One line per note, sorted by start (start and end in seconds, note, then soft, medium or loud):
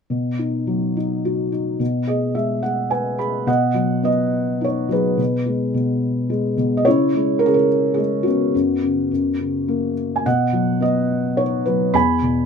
0.10 1.76 B2 soft
0.39 0.95 D#4 soft
0.67 1.76 F#3 soft
0.97 1.51 D#4 soft
1.25 1.79 F#4 soft
1.52 1.79 D#4 soft
1.79 3.43 B2 soft
2.07 2.61 G#4 soft
2.07 2.33 D#5 soft
2.35 3.44 G#3 soft
2.35 2.61 E5 soft
2.63 3.17 G#4 soft
2.63 2.89 F#5 medium
2.90 3.46 B4 soft
2.90 3.17 G#5 soft
3.18 3.46 G#4 soft
3.18 3.46 B5 soft
3.47 5.14 B2 soft
3.47 4.03 D#5 medium
3.47 4.07 F#5 medium
3.74 4.86 F#3 soft
4.03 5.14 B3 soft
4.03 4.64 D#5 medium
4.61 5.16 D#4 soft
4.61 4.93 C#5 medium
4.89 5.17 F#3 soft
4.89 6.54 G#4 soft
4.89 6.54 B4 medium
5.17 5.73 B2 soft
5.46 6.28 G#3 soft
5.74 6.56 B2 soft
6.30 6.84 G#3 soft
6.57 6.85 B2 soft
6.77 6.85 D#5 medium
6.85 7.40 C#3 medium
6.85 7.66 E4 medium
6.85 7.43 C#5 medium
7.15 7.96 G#3 soft
7.39 8.25 C#3 soft
7.39 7.47 A#4 medium
7.46 7.54 G#4 medium
7.54 7.98 A#4 medium
7.94 8.52 G#3 soft
7.94 8.25 G#4 medium
8.23 8.53 C#3 soft
8.23 9.91 F#4 medium
8.27 9.93 B3 soft
8.54 9.09 F#2 soft
8.83 9.10 C#3 soft
9.11 10.22 F#2 soft
9.40 10.22 C#3 soft
9.68 10.23 A#3 soft
10.16 10.24 G#5 soft
10.26 11.91 B2 soft
10.26 10.81 D#5 soft
10.26 10.84 F#5 medium
10.53 11.63 F#3 soft
10.80 11.91 B3 soft
10.80 11.40 D#5 medium
11.37 11.93 D#4 soft
11.37 11.64 C#5 medium
11.66 11.94 F#3 soft
11.66 11.95 B4 medium
11.93 12.46 E2 soft
11.93 12.46 G#5 medium
11.93 12.46 B5 medium
12.22 12.46 B2 soft